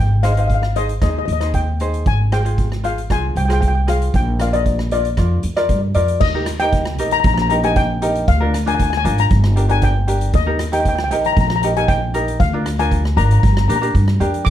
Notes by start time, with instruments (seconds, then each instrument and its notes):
Already playing: upright bass G#1, steel pan G5
0.23 ukulele D#4 G#4 C5, steel pan F5, cross-stick, closed hi-hat
0.32 steel pan F5
0.37 ukulele D#4 G#4 C5, steel pan F5, closed hi-hat
0.47 steel pan F5, kick, closed hi-hat
0.55 steel pan F5
0.62 steel pan F5, cross-stick
0.76 ukulele D#4 G#4 C5, steel pan D#5, closed hi-hat
0.89 closed hi-hat
1.02 upright bass D#2, ukulele D#4 G#4 C5, steel pan D#5, kick, cross-stick, closed hi-hat
1.10 steel pan D#5
1.19 steel pan D#5
1.25 upright bass D#2, steel pan D#5, closed hi-hat
1.33 steel pan D#5
1.41 ukulele D#4 G#4 C5, steel pan D#5, cross-stick, closed hi-hat
1.54 steel pan G5, kick, closed hi-hat
1.80 ukulele D#4 G#4 C5, closed hi-hat
1.94 closed hi-hat
2.06 upright bass G#1, steel pan G#5, kick, closed hi-hat
2.32 ukulele F4 G#4 C5, steel pan G5, cross-stick, closed hi-hat
2.45 ukulele F4 G#4 C5, closed hi-hat
2.58 kick, closed hi-hat
2.72 cross-stick
2.84 ukulele F4 G#4 C5, steel pan F5, closed hi-hat
2.98 closed hi-hat
3.10 upright bass C2, ukulele F4 G#4 C5, steel pan G#5, kick, cross-stick, closed hi-hat
3.35 upright bass C2, steel pan G5, closed hi-hat
3.45 ukulele F4 G#4, steel pan G5
3.50 ukulele C5, steel pan G5, cross-stick, closed hi-hat
3.61 steel pan G5, kick, closed hi-hat
3.68 steel pan G5
3.75 steel pan G5
3.87 ukulele F4 G#4 C5, steel pan F5, cross-stick, closed hi-hat
4.02 closed hi-hat
4.14 upright bass A#1, steel pan G5, kick, closed hi-hat
4.40 ukulele F4 A#4 D5, steel pan F5, cross-stick, closed hi-hat
4.53 ukulele F4 A#4 D5, steel pan D#5, closed hi-hat
4.66 kick, closed hi-hat
4.79 cross-stick
4.91 ukulele F4 A#4 D5, steel pan D5, closed hi-hat
5.05 closed hi-hat
5.17 upright bass F2, ukulele F4 A#4 D5, kick, cross-stick, closed hi-hat
5.43 upright bass F2, closed hi-hat
5.56 ukulele F4 A#4 D5, cross-stick, closed hi-hat
5.69 upright bass G2, kick, closed hi-hat
5.94 upright bass F2, ukulele F4 A#4 D5, closed hi-hat
6.08 closed hi-hat
6.20 upright bass D#2, steel pan D#5, kick, crash
6.34 ukulele D#4 G4 A#4
6.46 cross-stick, closed hi-hat
6.60 ukulele D#4 G4 A#4, steel pan G5, closed hi-hat
6.72 kick, closed hi-hat
6.85 cross-stick
6.98 upright bass A#1, ukulele D#4 G4 A#4, closed hi-hat
7.11 steel pan A#5, closed hi-hat
7.20 steel pan A#5, closed hi-hat
7.24 upright bass A#1, steel pan A#5, kick
7.34 steel pan A#5, cross-stick
7.42 steel pan A#5
7.50 ukulele D#4 G4 A#4, steel pan A#5, closed hi-hat
7.63 ukulele D#4 G4 A#4, steel pan G#5, closed hi-hat
7.76 steel pan G5, kick, closed hi-hat
8.02 ukulele D#4 G4 A#4, closed hi-hat
8.15 closed hi-hat
8.28 upright bass D2, steel pan F5, kick, closed hi-hat
8.40 ukulele D4 F4 A#4
8.54 cross-stick, closed hi-hat
8.66 ukulele D4 F4 A#4, steel pan G#5, closed hi-hat
8.75 steel pan G#5
8.80 steel pan G#5, kick, closed hi-hat
8.90 steel pan G#5, cross-stick
8.97 steel pan G#5
9.04 upright bass G#1, ukulele D4 F4 A#4, steel pan G#5, closed hi-hat
9.18 steel pan A#5, closed hi-hat
9.30 upright bass G1, kick, closed hi-hat
9.44 cross-stick
9.56 ukulele D4 G4 A#4, closed hi-hat
9.69 ukulele D4 G4 A#4, steel pan G#5, closed hi-hat
9.82 steel pan G5, kick, closed hi-hat
10.08 ukulele D4 G4 A#4, closed hi-hat
10.21 closed hi-hat
10.33 upright bass D#2, steel pan D#5, kick, closed hi-hat
10.46 ukulele D#4 G4 A#4
10.59 cross-stick, closed hi-hat
10.72 ukulele D#4 G4 A#4, steel pan G5, closed hi-hat
10.80 steel pan G5
10.85 steel pan G5, kick, closed hi-hat
10.96 steel pan G5, cross-stick
11.04 steel pan G5
11.10 upright bass A#1, ukulele D#4 G4 A#4, steel pan G5, closed hi-hat
11.24 steel pan A#5, closed hi-hat
11.33 steel pan A#5
11.37 upright bass A#1, kick, closed hi-hat
11.41 steel pan A#5
11.48 steel pan A#5, cross-stick
11.56 steel pan A#5
11.62 ukulele D#4 G4 A#4, steel pan A#5, closed hi-hat
11.76 ukulele D#4 G4 A#4, steel pan G#5, closed hi-hat
11.88 steel pan G5, kick, closed hi-hat
12.14 ukulele D#4 G4 A#4, closed hi-hat
12.28 closed hi-hat
12.40 upright bass D2, steel pan F5, kick, closed hi-hat
12.53 ukulele D4 F4 A#4
12.66 cross-stick, closed hi-hat
12.79 ukulele D4 F4 A#4, steel pan G#5, closed hi-hat
12.91 kick, closed hi-hat
13.05 cross-stick
13.16 upright bass G#1, ukulele D4 F4 A#4, steel pan A#5, closed hi-hat
13.25 steel pan A#5
13.31 steel pan A#5, closed hi-hat
13.40 upright bass G1, steel pan A#5, kick, closed hi-hat
13.47 steel pan A#5
13.54 steel pan A#5, cross-stick
13.61 steel pan A#5
13.68 upright bass A#2, ukulele D4 G4 A#4, steel pan A#5, closed hi-hat
13.76 steel pan A#5
13.81 ukulele D4 G4 A#4, closed hi-hat
13.95 upright bass G2, kick, closed hi-hat
14.08 cross-stick
14.20 upright bass F2, ukulele D4 G4 A#4, closed hi-hat
14.34 closed hi-hat
14.45 upright bass D#2, steel pan D6, kick, closed hi-hat